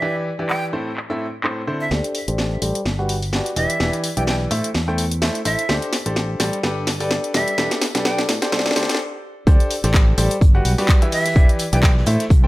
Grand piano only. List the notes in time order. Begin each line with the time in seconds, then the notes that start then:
0.02 E3 E4 G4 B4 D5
0.39 E3 E4 G4 B4 D5
0.73 A2 C4 E4 A4 C5
1.10 A2 C4 E4 A4 E5
1.44 A2 C4 E4 A4 C5
1.67 D3 C4 E4 A4 C5
1.91 D4 G4 A4 C5 D5
2.28 D4 G4 A4 C5 D5
2.62 G3 G4 A4 C5 D5
2.99 G3 F#4 G4 B4 F#5
3.33 F#4 G4 B4 D5
3.56 E3 E4 G4 B4 D5
3.80 E3 E4 G4 B4 D5
4.17 E3 E4 G4 B4 D5
4.51 A3 E4 A4 C5 E5
4.88 A3 E4 A4 C5 G5
5.22 A3 E4 A4 C5 E5
5.45 E4 A4 C5 E5
5.69 D4 G4 A4 C5 D5
6.06 D4 G4 A4 C5 D5
6.40 G3 G4 A4 C5 D5
6.63 D4 G4 A4 B4 D5
7.00 D4 G4 A4 B4 D5
7.34 G3 G4 A4 B4 D5
7.58 D4 G4 A4 B4 D5
7.95 D4 G4 A4 B4 D5
8.05 D4 G4 A4 B4 D5
8.42 D4 G4 A4 C5 D5
8.52 D4 G4 A4 C5 D5
8.76 D4 G4 A4 C5 D5
9.47 D4 G4 A4 C5 D5
9.84 D4 G4 A4 C5 D5
10.18 G3 G4 A4 C5 D5
10.55 G3 F#4 G4 B4 F#5
10.78 G3 F#4 G4 B4 D5
11.02 E3 E4 G4 B4 E5
11.36 E3 E4 G4 B4 D5
11.73 E3 E4 G4 B4 D5
12.07 A3 E4 A4 C5 E5
12.44 A3 E4 A4 C5 G5